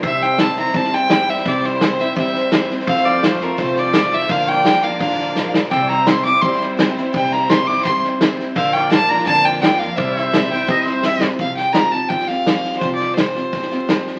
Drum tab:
HH |----p-------p---|----p-------p---|----p-------p---|----p-------p---|
SD |o-o-o-ooooo-o-oo|o-o-o-o-o-o-o-oo|ooo-o-o-o-o-o-oo|o-o-o-o-ooo-o-o-|
BD |o-------o-------|o-------o-------|o-------o-------|o-------o-------|

HH |----p-------p---|----p-------p---|----p-------p---|----p-------p---|
SD |o-o-o-o-ooo-o-o-|o-o-o-ooo-o-o-o-|o-o-o-ooo-o-o-o-|o-o-o-o-o-o-o-o-|
BD |o-------o-------|o-------o-------|o-------o-------|o-------o-------|

HH |----p-------p---|----p-------p---|
SD |o-o-o-o-ooo-o-oo|o-o-o-o-ooo-o-oo|
BD |o-------o-------|o-------o-------|